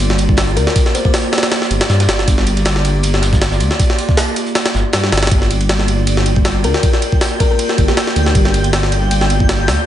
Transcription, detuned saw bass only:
0.00 0.58 G1 medium
0.57 0.66 D2 loud
1.71 1.80 G1 loud
1.89 2.07 G2 loud
2.08 2.26 G1 medium
2.28 3.02 G1 loud
3.03 3.62 G1 medium
3.61 3.70 D2 loud
4.75 4.84 G1 medium
4.94 5.11 G2 loud
5.12 5.30 G1 medium
5.31 6.06 G1 loud
6.07 6.66 G1 medium
6.64 6.73 D2 loud
7.78 7.87 G1 loud
8.16 8.33 D2 loud
8.35 9.10 G1 loud
9.11 9.70 G1 medium
9.68 9.77 D2 loud

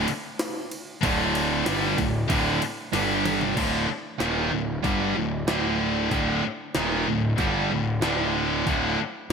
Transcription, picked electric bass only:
1.03 1.62 D1 loud
1.67 1.96 G1 loud
1.98 2.28 D1 medium
2.30 2.59 D1 loud
2.93 3.53 G1 loud
3.57 3.86 D1 medium
3.89 muted picked electric bass stroke soft
4.21 4.50 D#1 medium
4.53 4.82 D1 medium
4.84 5.14 G1 loud
5.17 5.46 D1 medium
5.48 6.08 D1 medium
6.12 6.41 D1 medium
6.44 muted picked electric bass stroke soft
6.76 7.05 D#1 medium
7.08 7.37 D1 medium
7.39 7.69 G1 medium
7.71 8.01 D1 medium
8.03 8.63 D1 medium
8.66 8.97 D1 medium
8.99 muted picked electric bass stroke soft

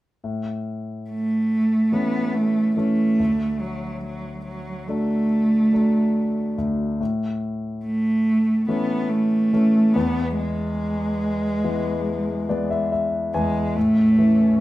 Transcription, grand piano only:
0.24 3.16 A2 soft
1.92 2.75 E3 soft
1.92 2.75 A3 soft
1.92 2.75 C#4 soft
2.77 3.18 E3 soft
2.77 3.18 A3 soft
2.77 3.19 C#4 soft
3.20 6.54 D2 soft
4.88 5.71 F#3 soft
4.88 5.71 A3 soft
4.88 5.71 D4 soft
5.73 6.55 F#3 soft
5.73 6.55 A3 soft
5.73 6.55 D4 soft
6.58 6.99 D2 soft
7.00 9.92 A2 soft
8.68 9.51 E3 soft
8.68 9.51 A3 soft
8.68 9.51 C#4 soft
9.53 9.94 E3 soft
9.53 9.94 A3 soft
9.53 9.95 C#4 soft
9.96 13.30 E2 soft
11.64 12.46 E3 soft
11.64 12.47 G#3 soft
11.64 12.47 B3 soft
12.49 13.31 E3 soft
12.49 13.31 G#3 soft
12.49 13.31 B3 soft
12.49 12.69 D5 soft
12.71 12.90 E5 soft
12.92 13.31 E5 soft
13.34 13.75 E2 soft
13.34 13.73 G#5 soft
13.76 14.60 A2 soft
14.19 14.61 E3 soft

